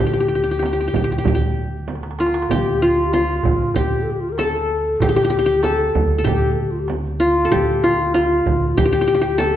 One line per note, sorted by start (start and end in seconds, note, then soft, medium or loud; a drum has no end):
0.00 0.90 D2 medium
0.00 1.56 G4 medium
0.00 0.54 A4 medium
0.00 darbuka dum medium
0.00 frame drum medium
0.06 0.13 G4 soft
0.13 0.20 G4 medium
0.20 0.28 G4 medium
0.28 0.35 G4 soft
0.35 0.43 G4 soft
0.44 0.51 G4 soft
0.51 0.59 G4 soft
0.59 0.65 G4 medium
0.59 darbuka tek medium
0.59 frame drum medium
0.65 0.72 G4 soft
0.73 0.80 G4 medium
0.80 0.87 G4 soft
0.88 0.95 G4 medium
0.93 1.23 D2 medium
0.93 1.04 G4 medium
0.93 darbuka dum medium
0.93 frame drum medium
1.04 1.12 G4 medium
1.09 1.18 G4 soft
1.09 darbuka ka soft
1.18 1.27 G4 medium
1.24 2.46 D2 medium
1.24 1.34 G4 soft
1.24 darbuka dum medium
1.24 frame drum medium
1.35 2.50 G4 medium
1.40 darbuka ka soft
1.56 darbuka ka soft
1.88 darbuka tek medium
1.88 frame drum medium
1.95 darbuka ka medium
2.03 darbuka tek medium
2.11 darbuka ka medium
2.19 2.51 F4 medium
2.19 2.82 F4 medium
2.19 darbuka tek medium
2.26 darbuka ka medium
2.34 darbuka tek medium
2.42 darbuka ka medium
2.49 3.41 D2 medium
2.49 2.83 G4 medium
2.49 3.75 G4 medium
2.49 darbuka dum medium
2.49 frame drum medium
2.82 3.06 F4 medium
2.82 3.13 F4 medium
3.07 3.15 G4 soft
3.13 4.48 F4 medium
3.13 3.78 F4 medium
3.13 darbuka tek medium
3.13 frame drum medium
3.43 3.74 D2 medium
3.43 darbuka dum loud
3.43 frame drum medium
3.74 4.97 D2 medium
3.74 5.01 G4 medium
3.74 4.04 G4 medium
3.74 darbuka dum loud
3.74 frame drum medium
3.90 darbuka ka soft
4.03 4.13 A4 medium
4.07 darbuka ka soft
4.11 4.21 G4 medium
4.20 4.30 F4 medium
4.29 4.33 G4 medium
4.29 4.40 A#4 medium
4.38 4.49 G#4 medium
4.38 5.56 A4 medium
4.38 darbuka tek medium
4.38 frame drum medium
4.49 5.02 A4 medium
4.69 darbuka ka soft
5.00 5.91 D2 medium
5.00 5.64 G4 medium
5.00 5.08 G4 medium
5.00 darbuka dum loud
5.00 frame drum medium
5.09 5.16 G4 medium
5.16 5.24 G4 medium
5.25 5.30 G4 medium
5.30 5.38 G4 medium
5.39 5.45 G4 medium
5.46 6.24 G4 medium
5.63 6.26 A4 medium
5.63 6.18 A4 medium
5.63 darbuka tek medium
5.63 frame drum medium
5.95 6.24 D2 medium
5.95 frame drum medium
6.18 7.35 A4 medium
6.24 7.48 D2 medium
6.24 7.50 G4 medium
6.24 6.53 G4 medium
6.24 darbuka dum loud
6.24 frame drum medium
6.41 darbuka ka soft
6.52 6.63 A4 medium
6.56 darbuka ka soft
6.61 6.73 G4 soft
6.71 6.81 F4 medium
6.80 6.89 G4 medium
6.88 darbuka tek medium
6.88 frame drum medium
7.19 7.83 F4 medium
7.19 7.53 F4 medium
7.19 darbuka ka soft
7.45 8.62 A4 medium
7.51 8.42 D2 medium
7.51 8.77 G4 medium
7.51 7.85 G4 medium
7.51 darbuka dum medium
7.51 frame drum medium
7.83 8.14 F4 medium
7.83 7.88 F#4 medium
8.14 9.49 F4 medium
8.14 8.79 F4 medium
8.14 darbuka tek medium
8.14 frame drum medium
8.46 8.75 D2 medium
8.46 darbuka dum medium
8.46 frame drum medium
8.77 9.56 D2 medium
8.77 8.85 G4 medium
8.77 9.39 G4 loud
8.77 frame drum medium
8.77 darbuka dum medium
8.85 8.92 G4 medium
8.93 9.01 G4 medium
8.93 darbuka ka soft
9.01 9.07 G4 medium
9.08 9.14 G4 medium
9.08 darbuka ka soft
9.15 9.21 G4 medium
9.21 9.56 G4 medium
9.38 9.56 A4 loud
9.38 9.49 A4 medium
9.38 darbuka tek medium
9.38 frame drum medium
9.47 9.54 G4 medium
9.53 9.56 A4 medium